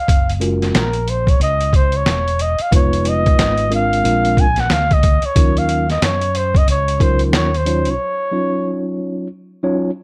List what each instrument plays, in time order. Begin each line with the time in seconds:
Already playing: flugelhorn F5
0.08 fretless electric bass F#1, kick, closed hi-hat
0.30 closed hi-hat
0.40 tine electric piano G#3 C#4 F4 F#4 A#4, closed hi-hat
0.62 snare, closed hi-hat
0.74 fretless electric bass A#1, flugelhorn A#4, snare, closed hi-hat
0.93 closed hi-hat
1.08 flugelhorn C5, closed hi-hat
1.27 flugelhorn C#5, kick, closed hi-hat
1.40 fretless electric bass C#2, flugelhorn D#5, closed hi-hat
1.61 closed hi-hat
1.73 flugelhorn C5, kick, closed hi-hat
1.92 closed hi-hat
1.96 flugelhorn C#5
2.06 fretless electric bass E1, snare, closed hi-hat
2.28 closed hi-hat
2.39 flugelhorn D#5, closed hi-hat
2.59 flugelhorn F5, muted fretless electric bass stroke, closed hi-hat
2.71 fretless electric bass F1, tine electric piano G#3 B3 D#4 F4 B4, flugelhorn C#5, kick, closed hi-hat
2.93 closed hi-hat
3.05 flugelhorn D#5, closed hi-hat
3.26 kick, closed hi-hat
3.38 fretless electric bass G#1, snare, closed hi-hat
3.58 closed hi-hat
3.69 tine electric piano G#3 C4 D4 F4 A#4, closed hi-hat
3.75 flugelhorn F5
3.93 closed hi-hat
4.04 fretless electric bass A#1, tine electric piano G#3 C4 D4 F4 A#4, closed hi-hat
4.25 closed hi-hat
4.37 flugelhorn G#5, kick, closed hi-hat
4.56 flugelhorn F#5, snare, closed hi-hat
4.70 fretless electric bass D2, flugelhorn F5, snare, closed hi-hat
4.91 flugelhorn D#5, kick, closed hi-hat
5.03 kick, closed hi-hat
5.22 flugelhorn C#5, muted fretless electric bass stroke, closed hi-hat
5.35 fretless electric bass D#2, tine electric piano F3 C#4 D#4 F4 A#4, kick, closed hi-hat
5.42 tine electric piano F#3
5.57 flugelhorn F5, closed hi-hat
5.69 closed hi-hat
5.90 flugelhorn D#5, snare, closed hi-hat
6.02 fretless electric bass F#2, flugelhorn C#5, snare, closed hi-hat
6.21 closed hi-hat
6.35 flugelhorn C5, closed hi-hat
6.55 flugelhorn D#5, kick, closed hi-hat
6.68 fretless electric bass C#2, flugelhorn C#5, closed hi-hat
6.88 closed hi-hat
6.99 tine electric piano F#3 C#4 D#4 F4 A#4, flugelhorn C5, kick, closed hi-hat
7.19 closed hi-hat
7.33 fretless electric bass D#2, flugelhorn C#5, snare, closed hi-hat
7.54 flugelhorn C5, closed hi-hat
7.66 tine electric piano F#3 C#4 D#4 F4 C#5, closed hi-hat
7.85 closed hi-hat
7.90 flugelhorn C#5
8.32 tine electric piano F#3 C#4 D#4 F4 C#5
9.63 tine electric piano F#3 C#4 D#4 F4 C#5